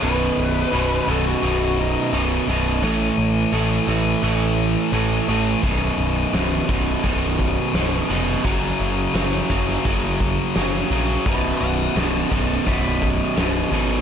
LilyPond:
<<
  \new Staff \with { instrumentName = "Lead electric guitar" } { \time 4/4 \key fis \dorian \tempo 4 = 85 b'4. a'16 fis'8. dis'8 r4 | r1 | r1 | r1 |
b'8 fis''8 a''4 b''8 r4. | }
  \new Staff \with { instrumentName = "Distorted electric guitar" } { \clef bass \time 4/4 \key fis \dorian <b,, fis, b,>4 <b,, fis, b,>8 <b,, fis, b,>8 <b,, fis, b,>4 <b,, fis, b,>8 <b,, fis, b,>8 | <a, e a>4 <a, e a>8 <a, e a>8 <a, e a>4 <a, e a>8 <a, e a>8 | <b,, fis, b,>4 <b,, fis, b,>8 <b,, fis, b,>8 <b,, fis, b,>4 <b,, fis, b,>8 <b,, fis, b,>8 | <fis, cis fis>4 <fis, cis fis>8 <fis, cis fis>8 <fis, cis fis>4 <fis, cis fis>8 <fis, cis fis>8 |
<b,, fis, b,>4 <b,, fis, b,>8 <b,, fis, b,>8 <b,, fis, b,>4 <b,, fis, b,>8 <b,, fis, b,>8 | }
  \new Staff \with { instrumentName = "Overdriven electric guitar" } { \clef bass \time 4/4 \key fis \dorian <b,, fis, b,>4 <b,, fis, b,>8 <b,, fis, b,>8 <b,, fis, b,>4 <b,, fis, b,>8 <b,, fis, b,>8 | <a, e a>4 <a, e a>8 <a, e a>8 <a, e a>4 <a, e a>8 <a, e a>8 | <b,, fis, b,>4 <b,, fis, b,>8 <b,, fis, b,>8 <b,, fis, b,>4 <b,, fis, b,>8 <b,, fis, b,>8 | <fis, cis fis>4 <fis, cis fis>8 <fis, cis fis>8 <fis, cis fis>4 <fis, cis fis>8 <fis, cis fis>8 |
<b,, fis, b,>4 <b,, fis, b,>8 <b,, fis, b,>8 <b,, fis, b,>4 <b,, fis, b,>8 <b,, fis, b,>8 | }
  \new Staff \with { instrumentName = "Picked electric bass" } { \clef bass \time 4/4 \key fis \dorian b,,,8 b,,,8 b,,,8 b,,,8 b,,,4 b,,,8 b,,,8 | a,,8 a,,8 a,,8 a,,8 a,,4 a,,8 a,,8 | b,,,8 b,,,8 b,,,8 b,,,8 b,,,4 b,,,8 eis,,8 | fis,,8 fis,,8 fis,,8 fis,,8 fis,,4 fis,,8 ais,,8 |
b,,,8 b,,,8 b,,,8 b,,,8 b,,,4 b,,,8 gis,,8 | }
  \new DrumStaff \with { instrumentName = "Drums" } \drummode { \time 4/4 r4 r4 r4 r4 | r4 r4 r4 r4 | <hho bd>8 hho8 <hho sn>8 <hho bd>8 <hho bd>8 <hho bd>8 <hho sn>8 hho8 | <hho bd>8 hho8 <hho sn>8 <hho bd>16 sn16 <hho bd>8 <hho bd>8 <hho sn>8 hho8 |
<hho bd>8 hho8 <hho sn>8 <hho bd>8 <hho bd>8 <hho bd>8 <hho sn>8 hho8 | }
>>